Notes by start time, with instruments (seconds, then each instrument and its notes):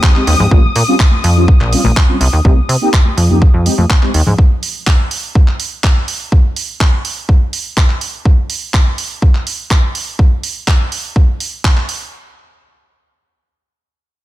Already playing: string section D#6
0.02 clean electric guitar D#3 G#3, kick, clap, shaker
0.15 analog polysynth G#3 C4 D#4 G4, clean electric guitar G#3 C4 G4, clap, shaker
0.27 analog synth bass D#2, clean electric guitar D#3 G#3 C4 G4, open hi-hat
0.39 analog synth bass G#2, clean electric guitar G#3 C4 G4, low conga, shaker
0.51 analog synth bass A#1, analog polysynth G3 C4 C#4 F4, kick, high conga, shaker
0.64 shaker
0.76 analog synth bass A#2, open hi-hat
0.87 analog polysynth G3 C4 C#4 F4, shaker
1.00 kick, clap
1.11 high conga, shaker
1.24 analog synth bass F2, open hi-hat
1.36 analog polysynth G3 C4 C#4 F4, shaker
1.48 analog synth bass A#1, kick
1.60 analog synth bass A#1, clap
1.72 analog polysynth G3 C4 C#4 F4, open hi-hat
1.84 analog synth bass A#1, high conga, low conga, shaker
1.96 kick, clap, shaker
2.09 analog polysynth G3 C4 C#4 F4, shaker
2.21 analog synth bass C2, open hi-hat
2.33 analog synth bass D#2, shaker
2.44 analog synth bass C2, analog polysynth A#3 C4 D#4 G4, kick, high conga, shaker
2.57 shaker
2.69 analog synth bass C3, open hi-hat
2.81 analog polysynth A#3 C4 D#4 G4, shaker
2.93 kick, clap
3.05 high conga, shaker
3.17 analog synth bass F2, open hi-hat
3.29 analog polysynth A#3 C4 D#4 G4, low conga, shaker
3.42 kick
3.54 analog synth bass F2
3.65 analog polysynth G#3 C4 D#4 G4, open hi-hat
3.78 analog synth bass F2, high conga, shaker
3.90 kick, clap
4.02 analog polysynth G#3 C4 D#4 G4, clap, shaker
4.14 analog synth bass D#2, open hi-hat
4.26 analog synth bass G#2, low conga, shaker
4.38 kick
4.63 open hi-hat
4.87 kick, clap
5.11 open hi-hat
5.35 kick
5.48 clap
5.60 open hi-hat
5.84 kick, clap
6.08 open hi-hat
6.32 kick
6.56 open hi-hat
6.80 kick, clap
7.05 open hi-hat
7.29 kick
7.53 open hi-hat
7.77 kick, clap
7.90 clap
8.01 open hi-hat
8.25 kick
8.50 open hi-hat
8.74 kick, clap
8.98 open hi-hat
9.22 kick
9.35 clap
9.47 open hi-hat
9.71 kick, clap
9.95 open hi-hat
10.19 kick
10.43 open hi-hat
10.68 kick, clap
10.92 open hi-hat
11.16 kick
11.40 open hi-hat
11.64 kick, clap
11.77 clap
11.89 open hi-hat